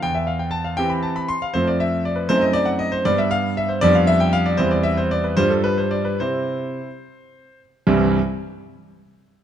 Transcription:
<<
  \new Staff \with { instrumentName = "Grand piano" } { \time 6/8 \key c \major \tempo 4. = 78 g''16 e''16 f''16 g''16 a''16 f''16 g''16 b''16 a''16 b''16 c'''16 f''16 | c''16 d''16 e''8 d''16 b'16 c''16 dis''16 d''16 fis''16 dis''16 c''16 | d''16 e''16 f''8 e''16 c''16 d''16 f''16 e''16 g''16 f''16 d''16 | c''16 d''16 e''16 c''16 d''16 b'16 c''16 a'16 b'16 c''16 d''16 b'16 |
c''2~ c''8 r8 | <c, g, e g c' e'>8 r2 r8 | }
  \new Staff \with { instrumentName = "Grand piano" } { \time 6/8 \key c \major e,4. <e c' g'>4. | <f, a c' f'>4. <fis, a c' dis'>4. | <g, g b d'>4. <f, g b d'>4. | <e, g c' e'>4. <g, g d' f'>4. |
<c c' e'>4. r4. | r2. | }
>>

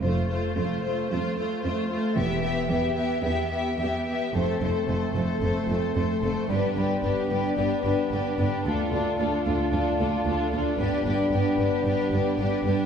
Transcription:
<<
  \new Staff \with { instrumentName = "Violin section" } { \time 4/4 \key f \lydian \tempo 4 = 112 c''8 c''8 c''8 c''8 c''8 c''8 c''8 c''8 | e''8 e''8 e''8 e''8 e''8 e''8 e''8 e''8 | c''8 c''8 c''8 c''8 c''8 c''8 c''8 c''8 | b'8 b'8 b'8 b'8 b'8 b'8 b'8 b'8 |
a'8 a'8 a'8 a'8 a'8 a'8 a'8 a'8 | b'8 b'8 b'8 b'8 b'8 b'8 b'8 b'8 | }
  \new Staff \with { instrumentName = "Violin section" } { \time 4/4 \key f \lydian f'8 f'8 f'8 f'8 f'8 f'8 f'8 f'8 | g'8 g'8 g'8 g'8 g'8 g'8 g'8 g'8 | a'8 a'8 a'8 a'8 a'8 a'8 a'8 a'8 | g'8 g'8 g'8 g'8 g'8 g'8 g'8 g'8 |
f'8 f'8 f'8 f'8 f'8 f'8 f'8 f'8 | g'8 g'8 g'8 g'8 g'8 g'8 g'8 g'8 | }
  \new Staff \with { instrumentName = "Viola section" } { \time 4/4 \key f \lydian a8 a8 a8 a8 a8 a8 a8 a8 | b8 b8 b8 b8 b8 b8 b8 b8 | a8 a8 a8 a8 a8 a8 a8 a8 | d'8 d'8 d'8 d'8 d'8 d'8 d'8 d'8 |
d'8 d'8 d'8 d'8 d'8 d'8 d'8 d'8 | d'8 d'8 d'8 d'8 d'8 d'8 d'8 d'8 | }
  \new Staff \with { instrumentName = "French horn section" } { \time 4/4 \key f \lydian r1 | r1 | <a c'>1 | <b d'>1 |
<a f'>1 | <b d'>1 | }
  \new Staff \with { instrumentName = "Cello section" } { \clef bass \time 4/4 \key f \lydian f,4 f,4 f,4 f,4 | e,4 e,4 e,4 e,4 | f,8 f,8 f,8 f,8 f,8 f,8 f,8 f,8 | g,8 g,8 g,8 g,8 g,8 g,8 g,8 g,8 |
d,8 d,8 d,8 d,8 d,8 d,8 d,8 d,8 | g,8 g,8 g,8 g,8 g,8 g,8 g,8 g,8 | }
  \new Staff \with { instrumentName = "Double bass section" } { \clef bass \time 4/4 \key f \lydian f,,4 r2. | e,,4 r2. | f,,8 f,,8 f,,8 f,,8 f,,8 f,,8 f,,8 f,,8 | g,,8 g,,8 g,,8 g,,8 g,,8 g,,8 g,,8 g,,8 |
d,8 d,8 d,8 d,8 d,8 d,8 d,8 d,8 | g,,8 g,,8 g,,8 g,,8 g,,8 g,,8 g,,8 g,,8 | }
>>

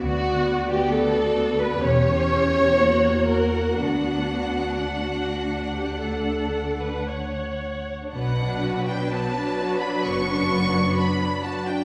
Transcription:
<<
  \new Staff \with { instrumentName = "Violin section" } { \time 4/4 \key b \minor \tempo 4 = 63 d''2 cis''4 fis''4~ | fis''1 | fis''8. g''16 a''8. b''16 cis'''4 b''8 a''16 g''16 | }
  \new Staff \with { instrumentName = "Viola section" } { \time 4/4 \key b \minor << { fis'2 g'4 fis'4~ | fis'4 fis'8. g'16 a'8. b'16 cis''4 | d'1 | } \\ { b2 cis'4 ais4 | b4 r2. | fis1 | } >> }
  \new Staff \with { instrumentName = "Violin section" } { \time 4/4 \key b \minor << { fis'8. g'16 a'8. b'16 cis''4. ais'8 | d'2. r4 | b'1 | } \\ { r1 | r1 | b16 d'16 fis'16 d'16 b16 d'16 fis'16 d'16 b16 d'16 fis'16 d'16 b16 d'16 fis'16 d'16 | } >> }
  \new Staff \with { instrumentName = "Cello section" } { \clef bass \time 4/4 \key b \minor d,2 e,2 | d,1 | b,4 r4 fis,4 r4 | }
  \new Staff \with { instrumentName = "Double bass section" } { \clef bass \time 4/4 \key b \minor d,4 r4 e,,4 r4 | d,4 r2. | b,,4 r4 fis,,4 r4 | }
>>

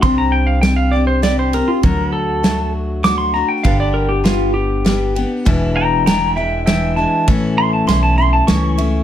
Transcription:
<<
  \new Staff \with { instrumentName = "Pedal steel guitar" } { \time 3/4 \key g \major \tempo 4 = 99 c'''16 bes''16 g''16 f''16 g''16 f''16 d''16 c''16 d''16 c''16 bes'16 f'16 | bes'8 a'4 r8 d'''16 c'''16 bes''16 g''16 | f''16 d''16 bes'16 g'16 f'8 g'4 r8 | r8 <g'' bes''>8 <g'' bes''>8 <e'' g''>8 <e'' g''>8 a''8 |
r8 c'''16 a''16 c'''16 a''16 c'''16 a''16 cis'''4 | }
  \new Staff \with { instrumentName = "Steel-string acoustic guitar" } { \time 3/4 \key g \major <c g c' d' g'>4 <g c' d' g'>8 <c' d' g'>8 <g c' d' g'>8 <c' d' g'>8 | <d fis d' fis'>4 <fis a d' fis'>4 <fis a d' fis'>8 <a d' fis'>8 | <g, d g b d' g'>4 <g b d' g'>4 <g b d' g'>8 <g b d' g'>8 | <e, b, e gis d' e'>4 <e gis d' e'>8 <e gis d' e'>8 <e gis d' e'>8 <e gis d' e'>8 |
<a, e a cis' e'>4 <e a cis' e'>8 <a cis' e'>8 <e a cis' e'>8 <a cis' e'>8 | }
  \new Staff \with { instrumentName = "Upright bass" } { \clef bass \time 3/4 \key g \major c,2. | d,2. | g,,2. | e,,2. |
a,,4 b,,4 cis,4 | }
  \new DrumStaff \with { instrumentName = "Drums" } \drummode { \time 3/4 <bd cymr>4 <cymr sn>4 <cymr sn>8 cymr8 | <bd cymr>4 <cymr sn>4 <cymr sn>4 | <bd cymr>4 <cymr sn>4 <cymr sn>8 cymr8 | <bd cymr>4 <cymr sn>4 <cymr sn>4 |
<bd cymr>4 <cymr sn>4 <cymr sn>8 cymr8 | }
>>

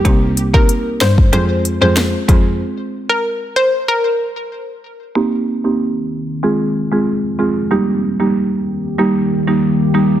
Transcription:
<<
  \new Staff \with { instrumentName = "Synth pluck" } { \time 4/4 \key f \minor \tempo 4 = 94 r8. bes'16 r8 c''16 r16 c''16 r8 c''16 r4 | r8. bes'16 r8 c''16 r16 bes'8. r4 r16 | r1 | r1 | }
  \new Staff \with { instrumentName = "Marimba" } { \time 4/4 \key f \minor <bes c' ees' g'>16 r8 <bes c' ees' g'>16 r4 <aes c' f' aes'>16 r8 <aes c' f' aes'>16 r8 <aes c' f' aes'>16 r16 | r1 | <bes c' ees' g'>16 r8 <bes c' ees' g'>16 r4 <aes c' f' aes'>16 r8 <aes c' f' aes'>16 r8 <aes c' f' aes'>16 r16 | <g bes ees' g'>16 r8 <g bes ees' g'>16 r4 <g bes ees' g'>16 r8 <g bes ees' g'>16 r8 <g bes ees' g'>16 r16 | }
  \new Staff \with { instrumentName = "Ambient pad" } { \time 4/4 \key f \minor << { r1 | r1 | <ees bes g'>2 <f aes aes'>2 | <ees g g'>1 | } \\ { r1 | r1 | c'1 | bes1 | } >> }
  \new Staff \with { instrumentName = "Cello" } { \clef bass \time 4/4 \key f \minor c,4 r8 g,8 f,8. f,8 r16 f,16 r16 | r1 | r1 | r1 | }
  \new DrumStaff \with { instrumentName = "Drums" } \drummode { \time 4/4 <hh bd>8 hh16 bd16 hh8 <hh ss sn>16 bd16 hh8 hh8 <hh ss sn>8 <hh bd>8 | r4 r4 r4 r4 | r4 r4 r4 r4 | r4 r4 r4 r4 | }
>>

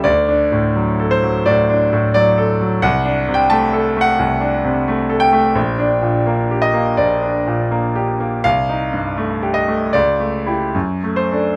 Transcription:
<<
  \new Staff \with { instrumentName = "Grand piano" } { \time 4/4 \key d \phrygian \tempo 4 = 84 d''4. c''8 d''4 d''4 | fis''8. g''16 a''8. fis''4.~ fis''16 g''8~ | g''4. ees''8 d''4 r4 | f''4. ees''8 d''4. c''8 | }
  \new Staff \with { instrumentName = "Grand piano" } { \time 4/4 \key d \phrygian \tuplet 3/2 { d,8 d'8 a,8 fis8 a'8 fis8 a,8 d'8 a,8 fis8 a'8 fis8 } | \tuplet 3/2 { c,8 d'8 c8 a8 a'8 a8 c,8 d'8 c8 a8 a'8 a8 } | \tuplet 3/2 { bes,,8 d'8 bes,8 bes8 g'8 bes8 bes,,8 d'8 bes,8 bes8 g'8 bes8 } | \tuplet 3/2 { c,8 ees'8 g,8 a8 g'8 a8 cis,8 a8 <e' g'>8 fis,8 a8 <d' a'>8 } | }
>>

